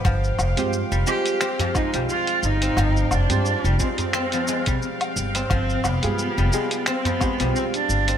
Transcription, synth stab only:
X:1
M:4/4
L:1/16
Q:"Swing 16ths" 1/4=88
K:none
V:1 name="Synth stab"
z3 [_A,CFGc]3 [CFGc]2 z2 [A,CFGc] [CFGc]4- [CFGc]- | [CFGc]3 [_A,CFGc]3 [CFGc]8- [CFGc]2- | [CFGc]3 [C,_A,FG_A]3 [C,FGA]2 z2 [A,CFGc] [CFGc]4- [CFGc] |]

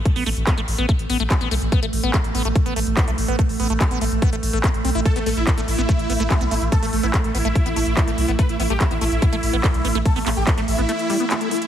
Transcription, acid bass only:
X:1
M:4/4
L:1/16
Q:1/4=144
K:C
V:1 name="Acid bass"
z B, A, z B, A, z B, A, z B, A, z B, A, z | B, A, z B, A, z B, A, z B, A, z B, A, z B, | A, z B, A, z B, A, z B, A, z A, B, z C E | z B, A, z B, A, z B, A, z B, A, z B, A, z |
B, A, z B, A, z B, A, z B, A, z B, A, z B, | A, z B, A, z B, A, z B, A, z B, A, z B, A, | z B, A, z B, A, z B, A, z G, B, z A, A, z |]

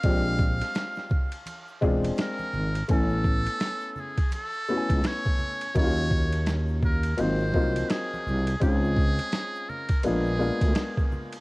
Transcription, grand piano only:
X:1
M:4/4
L:1/16
Q:"Swing 16ths" 1/4=84
K:Bbm
V:1 name="Grand piano"
[A,C=DF=G]6 z4 [A,CDFA]4- [A,CDFA] z | [=A,=B,^C=E^g]6 z4 [A,B,CE_G^g]4- [A,B,CE_G^g] z | [G,B,DE_F=F]6 z2 [G,B,CEF]2 [G,B,CEF]4- [G,B,CEF] z | [A,CDEF]6 z2 [A,B,_C=DF]2 [A,B,CDF]4- [A,B,CDF] z |]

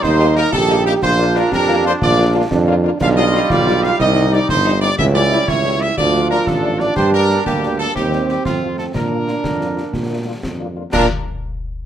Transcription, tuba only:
X:1
M:6/8
L:1/8
Q:3/8=121
K:Bb
V:1 name="Tuba" clef=bass
E,,3 B,,,3 | B,,,3 F,,3 | B,,,3 F,,3 | =B,,,3 B,,,3 |
C,,3 G,,,3 | ^C,,3 C,,3 | D,,3 A,,,3 | G,,3 D,,3 |
E,,3 F,,3 | B,,3 F,,3 | B,,3 F,,3 | B,, z4 z |]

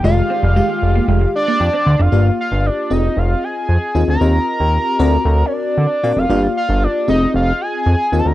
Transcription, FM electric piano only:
X:1
M:4/4
L:1/8
Q:1/4=115
K:Fdor
V:1 name="FM electric piano"
[A,FGd]2 [A,FGf]3 z g c' | [B,FGd]3 [CFAe]3 z [CFAe] | [CFGe]3 [C^E^F^Ad]3 z [CFAd] | [B,FGd]3 [CFAe]3 z [CFAe] |]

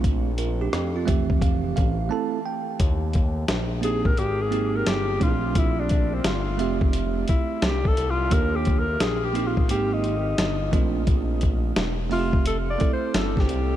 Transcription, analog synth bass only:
X:1
M:4/4
L:1/8
Q:"Swing 16ths" 1/4=87
K:Eb
V:1 name="Analog synth bass" clef=bass
B,,,2 F,, F,,,2 =A,,, z2 | E,,2 B,,,2 A,,,2 G,,, B,,,- | B,,,2 G,,, F,,,2 z C,, C,, | E,,2 B,,,2 A,,,2 G,,, B,,,- |
B,,,2 _F,,, =F,,,2 z G,,, C,, |]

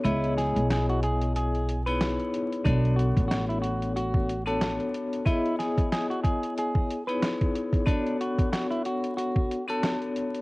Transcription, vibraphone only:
X:1
M:4/4
L:1/16
Q:"Swing 16ths" 1/4=92
K:Bdor
V:1 name="Vibraphone"
[B,EGc^d]8- [B,EGcd]2 z [B,^DEGc]4- [B,DEGc] | [B,DFAc]8- [B,DFAc]2 z [B,DFAc]4- [B,DFAc] | [B,EGc^d]8- [B,EGcd]2 z [B,^DEGc]4- [B,DEGc] | [B,DFAc]8- [B,DFAc]2 z [B,DFAc]4- [B,DFAc] |]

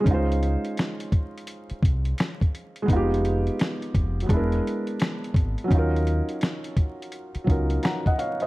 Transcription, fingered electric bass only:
X:1
M:4/4
L:1/16
Q:"Swing 16ths" 1/4=85
K:Db
V:1 name="Fingered electric bass" clef=bass
D,,3 z6 z C,,2 z4 | F,,,4 z2 F,,,2 =E,,,2 z4 ^G,,, z | E,,3 z6 z D,,2 z4 |]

